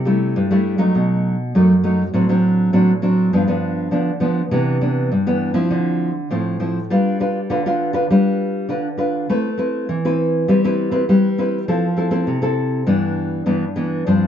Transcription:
0.00 0.33 C3 medium
0.05 0.46 G3 soft
0.05 0.46 A3 soft
0.05 0.46 E4 soft
0.36 0.93 G2 medium
0.51 0.76 G3 medium
0.51 0.76 A3 medium
0.51 0.76 E4 medium
0.78 1.34 F#3 medium
0.78 1.34 A3 medium
0.78 1.35 D#4 medium
0.95 1.52 B2 medium
1.55 2.12 F#2 medium
1.55 1.72 F#3 soft
1.55 1.73 A3 soft
1.55 1.73 D#4 medium
1.83 2.02 F#3 soft
1.83 2.02 A3 soft
1.83 2.02 D#4 medium
2.14 2.71 A2 medium
2.14 2.24 F#3 medium
2.14 2.25 C4 medium
2.14 2.25 D4 medium
2.29 2.69 F#3 medium
2.29 2.69 C4 medium
2.29 2.70 D4 medium
2.73 3.30 A2 medium
2.73 2.91 F#3 medium
2.73 2.91 C4 medium
2.73 2.91 D4 medium
3.02 3.30 F#3 soft
3.02 3.31 C4 soft
3.02 3.31 D4 medium
3.33 3.90 G2 medium
3.33 3.43 F3 soft
3.33 3.44 B3 soft
3.33 3.44 D4 medium
3.47 3.88 F3 soft
3.47 3.88 B3 medium
3.47 3.88 D4 medium
3.91 4.49 D3 medium
3.91 4.10 F3 soft
3.91 4.10 B3 soft
3.91 4.10 D4 medium
4.20 4.41 F3 medium
4.20 4.41 B3 medium
4.20 4.41 D4 soft
4.51 5.09 C3 medium
4.51 4.77 E3 medium
4.51 4.77 B3 medium
4.51 4.78 D4 medium
4.81 5.10 E3 medium
4.81 5.10 B3 soft
4.81 5.10 D4 soft
5.12 5.69 G2 medium
5.27 5.52 E3 medium
5.27 5.52 B3 medium
5.27 5.52 D4 medium
5.54 6.10 F3 medium
5.54 6.10 C4 medium
5.54 6.10 E4 medium
5.71 6.28 D3 medium
6.30 6.88 A2 medium
6.30 6.56 F3 soft
6.30 6.56 C4 soft
6.30 6.57 E4 soft
6.60 6.78 F3 soft
6.60 6.78 C4 medium
6.60 6.78 E4 soft
6.90 7.47 G3 medium
6.90 7.16 D4 medium
6.90 7.16 F4 medium
6.90 7.16 B4 medium
7.20 7.38 D4 soft
7.20 7.38 F4 soft
7.20 7.38 B4 medium
7.50 8.07 D3 medium
7.50 7.60 D4 medium
7.50 7.61 F4 medium
7.50 7.61 B4 medium
7.66 7.91 D4 medium
7.66 7.91 F4 medium
7.66 7.91 B4 medium
7.93 8.04 D4 medium
7.93 8.05 F4 medium
7.93 8.05 B4 medium
8.10 8.67 G3 medium
8.10 8.65 D4 medium
8.10 8.65 F4 medium
8.10 8.66 B4 medium
8.69 9.26 D3 medium
8.69 8.87 D4 soft
8.69 8.87 F4 soft
8.69 8.87 B4 medium
8.97 9.26 D4 soft
8.97 9.26 F4 soft
8.97 9.26 B4 medium
9.29 9.86 A3 medium
9.29 9.47 C4 medium
9.29 9.47 E4 medium
9.29 9.47 B4 medium
9.58 9.98 C4 soft
9.58 9.99 E4 soft
9.58 9.99 B4 medium
9.89 10.45 E3 medium
10.05 10.44 C4 medium
10.05 10.44 E4 medium
10.05 10.45 B4 medium
10.48 11.05 G3 medium
10.48 10.58 C4 medium
10.48 10.59 E4 soft
10.48 10.59 B4 medium
10.64 10.89 C4 medium
10.64 10.89 E4 medium
10.64 10.89 B4 medium
10.91 11.02 C4 medium
10.91 11.03 E4 soft
10.91 11.03 B4 medium
11.09 11.65 G3 medium
11.09 11.26 C4 soft
11.09 11.26 E4 soft
11.09 11.26 B4 medium
11.38 11.57 C4 medium
11.38 11.57 E4 soft
11.38 11.58 B4 soft
11.68 12.24 F3 medium
11.68 11.85 C4 medium
11.68 11.85 E4 medium
11.68 11.86 A4 medium
11.97 12.06 C4 soft
11.97 12.06 E4 soft
11.97 12.06 A4 soft
12.11 12.37 C4 medium
12.11 12.37 E4 medium
12.11 12.37 A4 medium
12.27 12.84 C3 medium
12.42 12.82 C4 medium
12.42 12.82 E4 medium
12.42 12.82 A4 medium
12.86 13.43 G2 medium
12.86 13.42 E3 medium
12.86 13.42 B3 medium
12.86 13.42 D4 medium
13.46 14.03 G2 medium
13.46 13.64 E3 medium
13.46 13.64 B3 medium
13.46 13.64 D4 medium
13.76 14.03 E3 medium
13.76 14.04 B3 soft
13.76 14.04 D4 soft
14.06 14.27 G2 medium
14.06 14.24 F3 medium
14.06 14.24 C4 medium
14.06 14.24 D4 medium

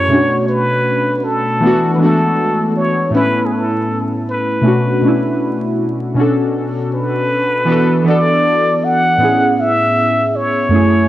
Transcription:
0.00 0.11 F#2 medium
0.00 0.09 A3 medium
0.00 0.10 C#4 medium
0.00 0.10 E4 medium
0.00 0.10 F#4 medium
0.00 0.11 G#4 medium
0.00 0.48 C#5 loud
0.08 1.22 B2 medium
0.08 1.23 A3 medium
0.08 1.24 C#4 medium
0.13 1.24 D4 medium
0.13 1.25 F#4 medium
0.48 1.26 B4 medium
1.24 1.93 A4 medium
1.60 1.92 E3 medium
1.60 1.93 A3 medium
1.60 1.93 B3 medium
1.65 1.94 D4 medium
1.65 1.95 F#4 medium
1.94 2.84 E3 medium
1.94 2.01 B4 medium
1.99 2.06 G#3 soft
1.99 2.86 B3 medium
1.99 2.87 D4 medium
1.99 2.75 A4 medium
2.04 2.88 A3 medium
2.04 2.88 F#4 medium
2.76 3.11 C#5 medium
3.10 4.25 A2 medium
3.10 4.26 A3 medium
3.10 4.27 B3 medium
3.15 4.27 C#4 medium
3.15 4.28 E4 medium
3.15 3.47 B4 medium
3.46 3.54 G#4 medium
3.53 4.02 A4 medium
4.29 5.75 B4 medium
4.61 4.94 B2 medium
4.61 4.95 A3 medium
4.61 4.96 C#4 medium
4.66 4.96 D4 medium
4.66 4.97 F#4 medium
5.01 5.88 B2 medium
5.01 5.89 A3 medium
5.01 5.90 C#4 medium
5.06 5.91 D4 medium
5.06 5.91 E4 medium
6.14 7.29 B2 medium
6.14 7.30 C#4 medium
6.14 7.31 D4 medium
6.19 7.32 F#4 medium
6.19 7.32 A4 medium
6.94 8.03 B4 medium
7.65 7.98 E3 medium
7.65 7.99 B3 medium
7.65 8.00 D4 medium
7.70 8.00 F#4 medium
7.70 8.01 A4 medium
8.04 8.92 E3 medium
8.04 8.92 B3 medium
8.04 8.93 D4 medium
8.08 8.94 F#4 medium
8.08 8.95 A4 medium
8.08 8.86 D5 loud
8.84 9.61 F#5 loud
9.18 10.33 A2 medium
9.18 10.33 B3 medium
9.18 10.34 C#4 medium
9.22 10.35 E4 medium
9.22 10.36 G#4 medium
9.60 10.37 E5 loud
10.36 11.08 C#5 medium
10.68 11.02 F#2 medium
10.68 11.03 A3 medium
10.68 11.03 C#4 medium
10.74 11.04 E4 medium
10.74 11.05 G#4 medium

